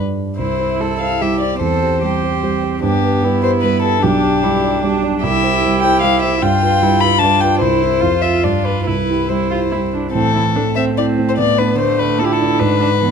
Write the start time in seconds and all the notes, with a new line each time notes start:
Already playing: G2 G3 D4 D5
0.38 C2 E4 C5
0.59 E4 C5
0.80 G3 E4 A4
1.01 E4 C5 F5
1.21 G3 E4 G4 C5 E5
1.41 E4 C5 D5
1.60 E2 C4 A4 C5
1.82 G4 C5
2.03 G3 G4
2.23 G4 C5
2.43 G3 G4 C5
2.63 G4 C5
2.82 G2 B3 D4 G4
3.03 G4 B4
3.22 G3 E4 G4 B4
3.43 G4 B4 C5
3.62 G3 G4 B4
3.83 G4 A4 B4
4.03 B1 D4 G4
4.23 G4 D5
4.43 G3 E4 G4 D5
4.64 G4 D5
4.83 G3 D4 G4 D5
5.03 G4 D5
5.23 C2 E4 G4 E5
5.43 G4 C5
5.64 G3 G4 C5
5.83 G4 C5 G5
6.02 G3 G4 C5 F5
6.22 G4 C5 E5
6.42 G2 F4 G5
6.62 F4 B4
6.82 G3 E4 F4 B4
7.01 F4 B4 B5
7.19 G3 D4 F4 B4 A5
7.40 F4 B4 G5
7.60 C2 E4 C5
7.82 E4 C5
8.01 F2 F4
8.22 F4 C5 E5
8.44 G2 D4 D5
8.65 F4 B4
8.86 C2 E4 B4
9.09 E4 G4
9.29 G3 E4 G4 C5
9.51 E4 F4 G4
9.71 G3 E4 G4
9.93 D4 E4 G4
10.13 A2 E3 C4 A4
10.35 C4 E4
10.56 A3 D4 A4
10.76 C4 C5 E5
10.97 C4 E4 D5
11.19 C4
11.29 C5
11.38 A2 B3 D5
11.59 D4 B4
11.78 D3 A3 B4 C5
11.99 B4 D5
12.19 E4 F4 A4
12.26 G4
12.33 A4
12.41 D4
12.59 G#2 D4 B4
12.81 D4
13.00 E3 B3 B4